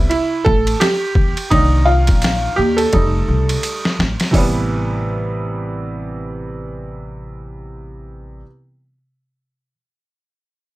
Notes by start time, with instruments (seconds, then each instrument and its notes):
0.10 upright piano E4, ride
0.45 upright bass A1, upright piano A4, kick
0.67 ride
0.80 upright piano G4, snare, hi-hat pedal, ride
1.15 upright bass E2, kick
1.37 ride
1.50 upright bass C2, upright piano D#3 A#3 D4 D#4, kick, ride
1.85 upright piano F4
2.07 upright bass A#1, kick, snare, ride
2.22 snare, hi-hat pedal, ride
2.56 upright bass D#2, upright piano G4
2.77 upright piano A4, ride
2.92 upright bass F1, upright piano G3 A3 D#4, kick, ride
3.28 upright bass C2
3.49 ride
3.63 hi-hat pedal, ride
3.85 snare
3.99 upright bass A1, snare
4.20 snare, ride
4.31 upright bass A1, upright piano C3 E3 G3, kick, open hi-hat
4.37 upright piano B3